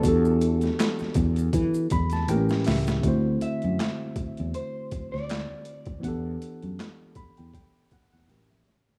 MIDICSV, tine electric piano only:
0, 0, Header, 1, 2, 480
1, 0, Start_track
1, 0, Tempo, 750000
1, 22, Time_signature, 4, 2, 24, 8
1, 5750, End_track
2, 0, Start_track
2, 0, Title_t, "Tine electric piano"
2, 0, Program_c, 0, 4
2, 0, Control_c, 0, 64, 127
2, 0, Note_on_c, 0, 52, 70
2, 8, Note_on_c, 0, 59, 68
2, 20, Note_on_c, 0, 62, 66
2, 30, Note_on_c, 0, 66, 61
2, 31, Control_c, 0, 64, 0
2, 43, Note_on_c, 0, 67, 63
2, 53, Note_on_c, 0, 69, 86
2, 140, Control_c, 0, 64, 127
2, 1230, Note_on_c, 0, 83, 76
2, 1349, Note_off_c, 0, 83, 0
2, 1362, Note_on_c, 0, 81, 70
2, 1424, Note_off_c, 0, 52, 0
2, 1430, Note_off_c, 0, 59, 0
2, 1436, Note_off_c, 0, 62, 0
2, 1441, Note_off_c, 0, 66, 0
2, 1447, Note_off_c, 0, 67, 0
2, 1452, Note_off_c, 0, 69, 0
2, 1456, Note_on_c, 0, 45, 79
2, 1459, Note_off_c, 0, 81, 0
2, 1463, Note_on_c, 0, 52, 75
2, 1469, Note_on_c, 0, 79, 81
2, 1470, Note_on_c, 0, 58, 64
2, 1472, Control_c, 0, 64, 0
2, 1477, Note_on_c, 0, 67, 73
2, 1482, Note_on_c, 0, 70, 86
2, 1509, Note_on_c, 0, 61, 76
2, 1512, Note_off_c, 0, 58, 0
2, 1578, Control_c, 0, 64, 127
2, 1689, Note_off_c, 0, 79, 0
2, 1707, Note_on_c, 0, 76, 69
2, 1918, Note_on_c, 0, 50, 76
2, 1928, Note_off_c, 0, 76, 0
2, 1931, Note_on_c, 0, 57, 71
2, 1939, Note_off_c, 0, 45, 0
2, 1939, Note_on_c, 0, 60, 72
2, 1943, Note_off_c, 0, 52, 0
2, 1950, Note_off_c, 0, 67, 0
2, 1950, Control_c, 0, 64, 0
2, 1950, Note_on_c, 0, 64, 71
2, 1952, Note_off_c, 0, 70, 0
2, 1960, Note_on_c, 0, 66, 67
2, 1966, Note_off_c, 0, 61, 0
2, 1971, Note_on_c, 0, 72, 78
2, 2080, Control_c, 0, 64, 127
2, 3825, Note_off_c, 0, 50, 0
2, 3831, Note_off_c, 0, 57, 0
2, 3835, Note_off_c, 0, 60, 0
2, 3839, Note_on_c, 0, 52, 69
2, 3841, Note_off_c, 0, 64, 0
2, 3846, Note_off_c, 0, 66, 0
2, 3848, Note_on_c, 0, 59, 68
2, 3851, Note_off_c, 0, 72, 0
2, 3859, Note_on_c, 0, 62, 61
2, 3869, Note_on_c, 0, 78, 62
2, 3872, Control_c, 0, 64, 0
2, 3881, Note_on_c, 0, 67, 61
2, 3893, Note_on_c, 0, 69, 73
2, 3969, Control_c, 0, 64, 127
2, 4586, Note_on_c, 0, 83, 64
2, 4707, Note_off_c, 0, 83, 0
2, 4722, Note_on_c, 0, 79, 52
2, 4819, Note_off_c, 0, 79, 0
2, 4829, Note_on_c, 0, 79, 58
2, 5049, Note_off_c, 0, 79, 0
2, 5067, Note_off_c, 0, 78, 0
2, 5075, Note_on_c, 0, 78, 60
2, 5192, Note_off_c, 0, 78, 0
2, 5201, Note_on_c, 0, 78, 60
2, 5265, Note_off_c, 0, 52, 0
2, 5270, Note_off_c, 0, 59, 0
2, 5275, Note_off_c, 0, 62, 0
2, 5286, Note_off_c, 0, 67, 0
2, 5292, Note_off_c, 0, 69, 0
2, 5295, Note_on_c, 0, 45, 65
2, 5298, Note_off_c, 0, 78, 0
2, 5300, Note_on_c, 0, 52, 57
2, 5307, Note_on_c, 0, 79, 54
2, 5309, Note_on_c, 0, 60, 46
2, 5311, Control_c, 0, 64, 0
2, 5314, Note_on_c, 0, 67, 53
2, 5321, Note_on_c, 0, 70, 74
2, 5348, Note_on_c, 0, 61, 55
2, 5351, Note_off_c, 0, 60, 0
2, 5428, Note_off_c, 0, 79, 0
2, 5442, Note_on_c, 0, 76, 55
2, 5443, Control_c, 0, 64, 127
2, 5539, Note_off_c, 0, 76, 0
2, 5552, Note_on_c, 0, 73, 51
2, 5750, Note_off_c, 0, 45, 0
2, 5750, Note_off_c, 0, 52, 0
2, 5750, Note_off_c, 0, 61, 0
2, 5750, Note_off_c, 0, 67, 0
2, 5750, Note_off_c, 0, 70, 0
2, 5750, Note_off_c, 0, 73, 0
2, 5750, End_track
0, 0, End_of_file